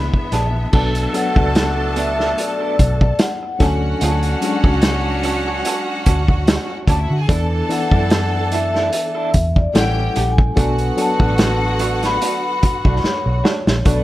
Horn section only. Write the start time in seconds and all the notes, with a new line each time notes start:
0.73 B2 A3 D4
3.60 C#4 D4 F#4
7.28 E3 D4 A4
9.75 E3 C#4 G4
10.57 D3 B3 F#4